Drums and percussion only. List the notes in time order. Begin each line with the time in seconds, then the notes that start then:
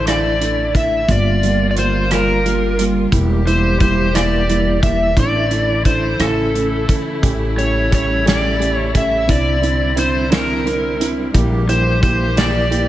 0.07 cross-stick, closed hi-hat
0.41 closed hi-hat
0.75 kick, closed hi-hat
1.09 kick, closed hi-hat
1.43 closed hi-hat
1.77 closed hi-hat
2.11 cross-stick, closed hi-hat
2.46 closed hi-hat
2.79 closed hi-hat
3.12 kick, closed hi-hat
3.47 closed hi-hat
3.80 kick, closed hi-hat
4.15 cross-stick, closed hi-hat
4.49 closed hi-hat
4.83 kick, closed hi-hat
5.17 kick, closed hi-hat
5.51 closed hi-hat
5.85 kick, closed hi-hat
6.20 cross-stick, closed hi-hat
6.55 closed hi-hat
6.89 kick, closed hi-hat
7.23 kick, closed hi-hat
7.59 closed hi-hat
7.92 kick, closed hi-hat
8.27 snare, closed hi-hat
8.62 closed hi-hat
8.95 kick, closed hi-hat
9.29 kick, closed hi-hat
9.63 closed hi-hat
9.97 closed hi-hat
10.32 snare, closed hi-hat
10.67 closed hi-hat
11.01 closed hi-hat
11.34 kick, closed hi-hat
11.69 closed hi-hat
12.03 kick, closed hi-hat
12.37 snare, closed hi-hat
12.72 closed hi-hat